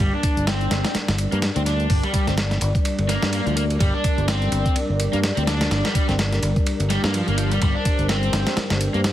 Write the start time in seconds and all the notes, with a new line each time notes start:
0.00 G3 D4 A#4 D5, closed hi-hat, ride
0.13 D4
0.23 kick, closed hi-hat, ride
0.37 G1, closed hi-hat
0.47 C4, snare, closed hi-hat, ride
0.61 closed hi-hat
0.71 G1, snare, closed hi-hat, ride
0.84 snare, closed hi-hat, ride
0.95 muted fingered electric bass stroke, snare, closed hi-hat, ride
1.08 G1, snare, ride
1.18 closed hi-hat, ride
1.32 G2 A#3, closed hi-hat
1.42 snare, closed hi-hat, ride
1.56 D2 C4, closed hi-hat, ride
1.66 D4, snare, closed hi-hat, ride
1.80 closed hi-hat
1.90 G1, kick, closed hi-hat, open hi-hat
2.03 G3, ride
2.14 G3, kick, closed hi-hat, ride
2.27 G1 C4, snare, closed hi-hat
2.38 snare, closed hi-hat, ride
2.51 snare, closed hi-hat
2.61 G1, closed hi-hat, ride
2.75 kick, closed hi-hat
2.85 closed hi-hat, ride
2.99 G1, ride
3.09 A#3, snare, closed hi-hat, ride
3.22 G2, snare, closed hi-hat
3.33 A#3, closed hi-hat, ride
3.46 D2 F3, closed hi-hat
3.56 A#3, closed hi-hat, ride
3.70 closed hi-hat, ride
3.80 G1 G3, kick, closed hi-hat, ride
3.94 D4
4.04 kick, closed hi-hat, ride
4.18 G1, closed hi-hat
4.28 C4, snare, closed hi-hat, ride
4.42 closed hi-hat
4.52 G1, closed hi-hat, ride
4.66 kick, closed hi-hat
4.76 muted fingered electric bass stroke, closed hi-hat, ride
4.89 G1
5.00 closed hi-hat, ride
5.13 G2 A#3, closed hi-hat
5.24 snare, closed hi-hat, ride
5.37 D2 C4, closed hi-hat, ride
5.47 D4, snare, closed hi-hat, ride
5.61 snare, closed hi-hat, ride
5.71 G1, snare, closed hi-hat, ride
5.85 G3, snare, ride
5.95 G3, kick, closed hi-hat, ride
6.08 G1 C4, snare, closed hi-hat
6.19 snare, closed hi-hat, ride
6.32 snare, closed hi-hat
6.42 G1, closed hi-hat, ride
6.56 kick, closed hi-hat
6.66 closed hi-hat, ride
6.80 G1, closed hi-hat, ride
6.90 G3, snare, closed hi-hat, ride
7.04 G2 A#3, snare, closed hi-hat
7.14 F3, closed hi-hat, ride
7.28 G1 A#3, closed hi-hat
7.38 F3, closed hi-hat, ride
7.51 G3, closed hi-hat, ride
7.61 G1 G3 C5, kick, closed hi-hat, ride
7.75 D4
7.85 kick, closed hi-hat, ride
7.99 G1, closed hi-hat
8.09 C4, snare, closed hi-hat, ride
8.23 closed hi-hat
8.33 G1, snare, closed hi-hat, ride
8.47 snare, closed hi-hat, ride
8.57 muted fingered electric bass stroke, snare, closed hi-hat, ride
8.70 G1, snare, ride
8.81 closed hi-hat, ride
8.94 G2 A#3, closed hi-hat
9.04 snare, closed hi-hat, ride